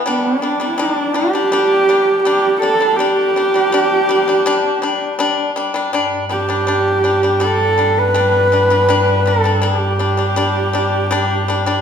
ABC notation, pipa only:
X:1
M:4/4
L:1/16
Q:1/4=81
K:none
V:1 name="Pipa"
[G,D]2 [G,D] [G,D] [G,D]2 [G,D] [G,D] [G,D]2 [G,D]2 [G,D]2 [G,D] [G,D] | [G,D]2 [G,D] [G,D] [G,D]2 [G,D] [G,D] [G,D]2 [G,D]2 [G,D]2 [G,D] [G,D] | [G,D]2 [G,D] [G,D] [G,D]2 [G,D] [G,D] [G,D]2 [G,D]2 [G,D]2 [G,D] [G,D] | [G,D]2 [G,D] [G,D] [G,D]2 [G,D] [G,D] [G,D]2 [G,D]2 [G,D]2 [G,D] [G,D] |]